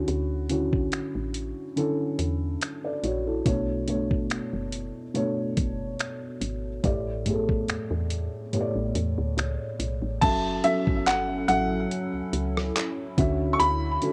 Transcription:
Already playing: felt piano D3 C#4 E4 F#4
0.08 fm bass D2, closed hi-hat
0.49 felt piano D3 C#4 E4 F#4, closed hi-hat
0.73 kick
0.92 fm bass A1, finger snap, closed hi-hat
1.15 fm bass A1
1.34 closed hi-hat
1.76 felt piano D3 C#4 E4 A4, closed hi-hat
2.19 fm bass E2, closed hi-hat
2.61 finger snap, closed hi-hat
2.84 felt piano A4 D5
3.03 fm bass A#1, felt piano F#4 C#5, closed hi-hat
3.27 felt piano E4 A4
3.45 fm bass B1, felt piano B2 A3 D4 C#5, kick, closed hi-hat
3.88 felt piano B2 A3 D4 C#5, closed hi-hat
4.11 kick
4.30 fm bass F#1, finger snap, closed hi-hat
4.53 fm bass F#1
4.72 closed hi-hat
5.14 felt piano B2 A3 D4 C#5, closed hi-hat
5.57 fm bass F#1, kick, closed hi-hat
6.00 finger snap, closed hi-hat
6.41 fm bass G#1, closed hi-hat
6.83 fm bass A1, felt piano A2 A3 G4 D5, kick, closed hi-hat
7.26 felt piano A2 A3 G4 G#4, closed hi-hat
7.34 felt piano A4
7.49 kick
7.68 fm bass E2, finger snap, closed hi-hat
7.91 fm bass E2
8.10 closed hi-hat
8.53 felt piano A2 A3 G4 C#5, closed hi-hat
8.61 felt piano D5
8.75 fm bass A1
8.95 fm bass E2, closed hi-hat
9.18 fm bass D2
9.37 fm bass C#2, finger snap, closed hi-hat
9.79 fm bass B1, closed hi-hat
10.02 fm bass A1
10.21 fm bass F#1, felt piano F#3 C#4 A4 E5, analog synth pad F#3 C#4 E4 A4, grand piano A5, kick, closed hi-hat, crash
10.64 felt piano F#3 C#4 A4 E5, grand piano E5, closed hi-hat
10.87 fm bass G1, kick
11.06 grand piano F#5, clap, closed hi-hat
11.48 fm bass A1, felt piano F#3 C#4 A4 E5, grand piano F#5, closed hi-hat
11.91 closed hi-hat
12.14 fm bass C#2
12.33 fm bass C#2, closed hi-hat
12.57 cross-stick
12.76 clap, closed hi-hat
13.17 fm bass D2, felt piano D3 C#4 F#4 E5, analog synth pad D3 C#4 F#4, kick, closed hi-hat
13.53 grand piano C#6
13.60 fm bass D2, grand piano B5, closed hi-hat
14.02 felt piano D3 C#4 F#4 A4, closed hi-hat

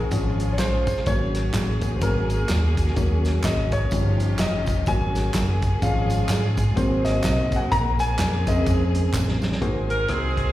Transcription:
Already playing: string section G#3 C4 F#4, grand piano G#4
0.11 fingered electric bass G#1, grand piano F3 G#3 C#4, string section C#4 F4 G#4, kick, closed hi-hat, tambourine
0.40 closed hi-hat, tambourine
0.53 grand piano C#5
0.58 fingered electric bass A#1, grand piano C5, snare, clap, closed hi-hat, tambourine
0.87 kick, closed hi-hat, tambourine
0.97 snare
1.06 fingered electric bass G#1, grand piano F#3 A#3 C#4 C#5, string section A#3 F#4 G#4, kick, closed hi-hat, tambourine
1.35 snare, closed hi-hat, tambourine
1.53 fingered electric bass A1, kick, snare, clap, closed hi-hat, tambourine
1.81 kick, closed hi-hat, tambourine
1.96 grand piano C5
2.01 fingered electric bass G#1, grand piano F#3 A#3 C#4 A#4, kick, closed hi-hat, tambourine
2.30 closed hi-hat, tambourine
2.48 fingered electric bass D#2, snare, clap, closed hi-hat, tambourine
2.77 kick, closed hi-hat, tambourine
2.87 snare
2.96 fingered electric bass D#2, grand piano F#3 A#3 C#4, kick, closed hi-hat, tambourine
3.25 snare, closed hi-hat, tambourine
3.44 fingered electric bass G#1, grand piano D#5, kick, snare, clap, closed hi-hat, tambourine
3.72 grand piano C#5, kick, closed hi-hat, tambourine
3.91 fingered electric bass G1, grand piano F3 G3 C#4, string section D#4 F4 G4, kick, closed hi-hat, tambourine
4.20 closed hi-hat, tambourine
4.38 fingered electric bass F1, grand piano D#5, snare, clap, closed hi-hat, tambourine
4.66 kick, closed hi-hat, tambourine
4.86 fingered electric bass G#1, grand piano F#3 A#3 C#4 G#5, string section A#3 F#4 G#4, kick, closed hi-hat, tambourine
5.15 snare, closed hi-hat, tambourine
5.34 fingered electric bass F#1, kick, snare, clap, closed hi-hat, tambourine
5.62 kick, closed hi-hat, tambourine
5.82 fingered electric bass G#1, grand piano F3 G#3 C#4 F5, string section G#3 F4, kick, closed hi-hat, tambourine
6.10 closed hi-hat, tambourine
6.29 fingered electric bass G#2, snare, clap, closed hi-hat, tambourine
6.57 kick, closed hi-hat, tambourine
6.76 fingered electric bass G#1, grand piano F#3 A#3 C4 C5, string section A#3 C4 F#4, kick, closed hi-hat, tambourine
7.05 grand piano D#5, snare, closed hi-hat, tambourine
7.24 fingered electric bass B1, grand piano D#5, kick, snare, clap, closed hi-hat, tambourine
7.52 kick, closed hi-hat, tambourine
7.56 grand piano F#5 G#5
7.71 fingered electric bass A#1, string section C#3 G#4, grand piano A#5, kick, closed hi-hat, tambourine
7.99 grand piano G#5, closed hi-hat, tambourine
8.18 fingered electric bass F2, snare, clap, closed hi-hat, tambourine
8.46 grand piano C#3 G#3 C4 D#5, kick, closed hi-hat, tambourine
8.66 fingered electric bass F2, kick, closed hi-hat, tambourine
8.94 closed hi-hat, tambourine
9.13 fingered electric bass A1, kick, snare, clap, tambourine
9.28 snare
9.42 snare, tambourine
9.52 snare
9.61 fingered electric bass G#1, grand piano G#2 A#3 F#4 G#4 C5, string section A#4 C5 G#5, kick, closed hi-hat
9.90 saxophone section A#4, closed hi-hat
10.08 fingered electric bass C2, grand piano A#3 F#4 G#4 C5, saxophone section C4 D#4 G#4, cross-stick, closed hi-hat
10.37 kick, closed hi-hat

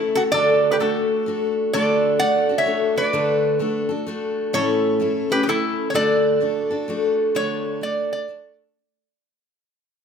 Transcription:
Already playing: steel-string acoustic guitar A3 C#4 E4 A4
0.15 resonator guitar played with a steel bar F#4 A4
0.32 steel-string acoustic guitar D3 A3 D4 F#4 A4, resonator guitar played with a steel bar A4 D5
0.71 resonator guitar played with a steel bar G4 B4
0.79 steel-string acoustic guitar A3 D4 F#4 A4, resonator guitar played with a steel bar F#4 A4
1.26 steel-string acoustic guitar A3 D4 F#4 A4
1.73 steel-string acoustic guitar D3 A3 D4 F#4 A4, resonator guitar played with a steel bar A4 D5
2.19 steel-string acoustic guitar A3 D4 F#4 A4, resonator guitar played with a steel bar D5 F#5
2.49 steel-string acoustic guitar D4 F#4 A4
2.58 resonator guitar played with a steel bar C#5 E5
2.66 steel-string acoustic guitar A3 D4 F#4 A4
2.96 steel-string acoustic guitar D4 F#4 A4, resonator guitar played with a steel bar B4 D5
3.13 steel-string acoustic guitar D3 A3 D4 F#4 A4
3.59 steel-string acoustic guitar A3 D4 F#4 A4
3.89 steel-string acoustic guitar D4 F#4 A4
4.07 steel-string acoustic guitar A3 D4 F#4 A4
4.53 steel-string acoustic guitar A2 E3 A3 C#4 E4 A4, resonator guitar played with a steel bar A4 C#5
5.00 steel-string acoustic guitar A3 C#4 E4 A4
5.30 steel-string acoustic guitar A3 C#4 E4 A4, resonator guitar played with a steel bar G4 B4
5.43 steel-string acoustic guitar A3 C#4, resonator guitar played with a steel bar G4
5.48 steel-string acoustic guitar E4 A4, resonator guitar played with a steel bar E4 A4
5.90 steel-string acoustic guitar D3, resonator guitar played with a steel bar C#5
5.94 steel-string acoustic guitar A3 D4 F#4 A4, resonator guitar played with a steel bar A4 D5
6.40 steel-string acoustic guitar A3 D4 F#4 A4
6.70 steel-string acoustic guitar D4 F#4 A4
6.88 steel-string acoustic guitar A3 D4 F#4 A4
7.35 steel-string acoustic guitar D3 A3 D4 F#4 A4, resonator guitar played with a steel bar C#5
7.81 steel-string acoustic guitar A3 D4 F#4 A4, resonator guitar played with a steel bar D5
8.13 resonator guitar played with a steel bar D5
8.28 steel-string acoustic guitar A3 D4 F#4 A4

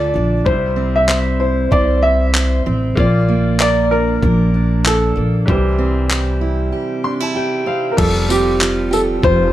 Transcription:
Already playing: upright bass D2, steel-string acoustic guitar D3 D4 F4 A4, grand piano A3 F4 D5, upright piano D5
0.14 upright bass A#1, steel-string acoustic guitar D4
0.45 upright bass C2, steel-string acoustic guitar C3, grand piano G3 E4 C5, upright piano C5, kick
0.76 steel-string acoustic guitar C4
0.96 upright piano E5
1.08 steel-string acoustic guitar C5, clap
1.40 steel-string acoustic guitar E4, upright piano C5
1.71 upright bass C2, steel-string acoustic guitar C5, upright piano D5, kick
2.02 steel-string acoustic guitar E4, upright piano E5
2.34 steel-string acoustic guitar C5, clap
2.66 upright bass A1, steel-string acoustic guitar C4
2.95 upright bass A#1, steel-string acoustic guitar A#2, grand piano A#3 F4, kick
3.00 grand piano D5
3.29 steel-string acoustic guitar A#3
3.60 steel-string acoustic guitar A#4, upright piano D5, clap
3.91 steel-string acoustic guitar D4, upright piano A#4
4.23 upright bass A#1, steel-string acoustic guitar A#4, kick
4.54 steel-string acoustic guitar D4
4.86 upright piano A4, clap
5.16 upright bass A#1, steel-string acoustic guitar A#3
5.46 upright bass C2, steel-string acoustic guitar C3, grand piano E3 G3 C5, upright piano G4, kick
5.79 steel-string acoustic guitar C4
6.09 steel-string acoustic guitar G4, clap
6.41 steel-string acoustic guitar E4
6.72 steel-string acoustic guitar G4
7.04 steel-string acoustic guitar D4, grand piano C6
7.20 steel-string acoustic guitar E4, grand piano A5
7.35 steel-string acoustic guitar G4, grand piano G5
7.66 steel-string acoustic guitar C4, grand piano F5
7.92 upright piano A#4
7.97 upright bass F1, steel-string acoustic guitar F3, grand piano G3 F4, upright piano A4, kick, crash
8.01 grand piano A4
8.29 steel-string acoustic guitar C4, upright piano G4, tambourine
8.61 steel-string acoustic guitar F4, clap
8.91 steel-string acoustic guitar G4, upright piano A4, tambourine
9.22 upright bass F1, steel-string acoustic guitar F4, upright piano C5, kick

